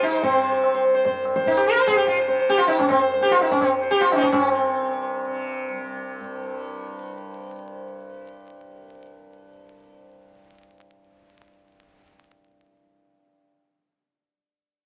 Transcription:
Already playing: tanpura C2 G2 C3, sitar C5
0.03 sitar D#4, tabla te
0.12 sitar C5
0.23 sitar C4, tabla tin, tabla ge
0.28 tanpura C3, sitar C5
0.42 sitar C5
0.52 sitar C5
0.64 tabla na
0.74 tanpura C2, sitar C5
0.85 tabla na
0.95 sitar C5
1.04 sitar C5, tabla tin, tabla ge
1.23 tanpura G2, tabla na
1.36 sitar C5, tabla ke
1.46 sitar D#4, tabla tin, tabla ge
1.57 sitar G4
1.67 tanpura C3, sitar A#4
1.76 sitar C5
1.87 sitar G#4, tabla na, tabla ge
1.97 sitar G4
2.07 sitar F4, tabla ge
2.17 tanpura C3, sitar C5
2.28 sitar C5, tabla tin
2.39 sitar C5
2.49 sitar G4, tabla te
2.58 sitar F4, tabla te
2.64 tanpura C2, sitar D#4
2.69 tabla na
2.79 sitar C#4, tabla tin, tabla ge
2.88 sitar C4, tabla na, tabla ge
3.00 sitar C5
3.11 tanpura G2, sitar C5
3.21 sitar G4, tabla te
3.31 sitar F4, tabla te
3.41 sitar D#4, tabla na
3.51 sitar C#4, tabla tin, tabla ge
3.60 tanpura C3, sitar C4, tabla na, tabla ge
3.83 sitar C5
3.91 sitar G4, tabla te
4.01 sitar F4, tabla te
4.05 tanpura C3
4.12 sitar D#4, tabla na
4.16 sitar C#4 D#4
4.22 sitar C#4, tabla tin, tabla ge
4.32 tanpura G2, sitar C#4, tabla na, tabla ge
4.47 sitar C4
4.79 tanpura C3
5.27 tanpura C3
5.73 tanpura C2
6.20 tanpura G2

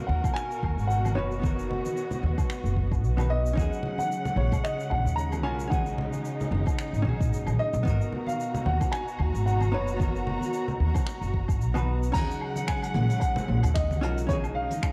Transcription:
Already playing: string section B2 F#4 A#4, hollow-body jazz guitar B3 D#4 F#4 A#4
0.07 upright bass D#2, grand piano F#5, high conga
0.24 kick, low conga, low woodblock, shaker
0.34 grand piano G#5, finger snap, shaker
0.51 shaker
0.63 upright bass D#2, kick, high conga, low woodblock
0.77 upright bass G#1, shaker
0.87 grand piano F#5, shaker
1.05 high conga, low woodblock, shaker
1.15 upright bass F#1, hollow-body jazz guitar B3 D#4 F#4 B4, grand piano C#5
1.31 shaker
1.39 hollow-body jazz guitar B3 D#4, kick
1.44 string section B3, hollow-body jazz guitar F#4 A#4, high conga, shaker
1.59 shaker
1.70 low conga
1.85 high conga, shaker
1.97 shaker
2.11 low conga, shaker
2.23 upright bass D#2, high conga
2.38 kick, low conga, low woodblock, shaker
2.50 finger snap, shaker
2.64 upright bass F#1, shaker
2.76 kick, high conga
2.91 kick, low woodblock, shaker
3.03 upright bass B1, shaker
3.17 hollow-body jazz guitar B3 D#4 F#4 B4, high conga, low woodblock, shaker
3.30 grand piano D#5
3.46 shaker
3.53 upright bass D#2, hollow-body jazz guitar C#4 D#4, string section F#5, kick
3.57 string section C#3 F#3 G#3, hollow-body jazz guitar F#4 G#4, high conga, shaker
3.73 shaker
3.83 low conga
3.98 grand piano F#5, high conga, shaker
4.12 shaker
4.25 low conga, shaker
4.36 upright bass A#1, grand piano C#5, high conga
4.52 kick, low conga, low woodblock, shaker
4.63 grand piano D#5, finger snap, shaker
4.80 shaker
4.90 upright bass A#1, grand piano F#5, kick, high conga, low woodblock
5.05 upright bass D#2, shaker
5.16 grand piano A#5, shaker
5.32 high conga, low woodblock, shaker
5.43 upright bass B1, hollow-body jazz guitar C#4 F4 F#4 A#4, grand piano G#5
5.60 shaker
5.68 hollow-body jazz guitar C#4 D#4, grand piano F#5, kick
5.72 string section D#4, hollow-body jazz guitar F#4 G#4, high conga, shaker
5.86 shaker
5.98 low conga
6.13 high conga, shaker
6.25 shaker
6.41 low conga, shaker
6.51 upright bass F#1, high conga
6.66 kick, low conga, low woodblock, shaker
6.78 finger snap, shaker
6.93 upright bass G#1, shaker
7.02 upright bass B1, hollow-body jazz guitar C#4 D#4, kick, high conga
7.07 hollow-body jazz guitar F#4 G#4
7.21 kick, shaker
7.32 upright bass F#1, shaker
7.46 upright bass B1, high conga, low woodblock, shaker
7.59 grand piano D#5
7.73 upright bass B1, shaker
7.83 upright bass G#1, string section B2 F#4 A#5, hollow-body jazz guitar B3 D#4, kick, high conga
7.87 hollow-body jazz guitar F#4 A#4, shaker
8.01 shaker
8.12 low conga
8.27 grand piano F5, high conga, shaker
8.40 shaker
8.54 low conga, shaker
8.66 upright bass D#2, grand piano F#5, high conga
8.81 kick, low conga, low woodblock, shaker
8.92 grand piano G#5, finger snap, shaker
9.08 shaker
9.19 upright bass D#2, kick, high conga, low woodblock
9.34 upright bass G#1, shaker
9.46 grand piano F#5, shaker
9.61 high conga, low woodblock, shaker
9.72 upright bass F#1, hollow-body jazz guitar B3 D#4 F#4 B4, grand piano C#5
9.88 shaker
9.97 hollow-body jazz guitar B3 D#4, kick
10.01 hollow-body jazz guitar F#4 A#4, high conga, shaker
10.16 shaker
10.27 low conga
10.41 high conga, shaker
10.53 shaker
10.68 low conga, shaker
10.80 upright bass D#2, high conga
10.94 kick, low conga, low woodblock, shaker
11.06 finger snap, shaker
11.21 upright bass F#1, shaker
11.34 kick, high conga
11.48 kick, low woodblock, shaker
11.60 upright bass B1, shaker
11.74 hollow-body jazz guitar B3 D#4 F#4 B4, high conga, low woodblock, shaker
12.03 shaker
12.12 upright bass D#2, string section C#3 F#3 G#3 F#5, hollow-body jazz guitar C#4 D#4, grand piano A#5, kick, closed hi-hat, crash, high conga, shaker
12.16 hollow-body jazz guitar F#4 G#4
12.31 shaker
12.41 low woodblock
12.56 closed hi-hat, high conga, shaker
12.68 grand piano G#5, finger snap, kick, shaker
12.83 closed hi-hat, low woodblock, shaker
12.94 upright bass A#1, closed hi-hat, high conga
13.10 closed hi-hat, shaker
13.20 grand piano F#5, kick, closed hi-hat, low woodblock, shaker
13.36 low conga, shaker
13.48 upright bass A#1, high conga
13.63 upright bass D#2, closed hi-hat, low conga, low woodblock, shaker
13.74 grand piano D#5, finger snap, kick, closed hi-hat, shaker
13.91 high conga, shaker
14.01 upright bass B1, hollow-body jazz guitar C#4 F4 F#4 A#4, closed hi-hat, low woodblock
14.17 closed hi-hat, shaker
14.26 string section C#3 G#3 D#4, hollow-body jazz guitar C#4 D#4, grand piano C#5, kick, closed hi-hat, high conga, shaker
14.31 hollow-body jazz guitar F#4 G#4
14.44 low woodblock, shaker
14.55 grand piano F5
14.71 closed hi-hat, high conga, shaker
14.83 finger snap, kick, low woodblock, shaker

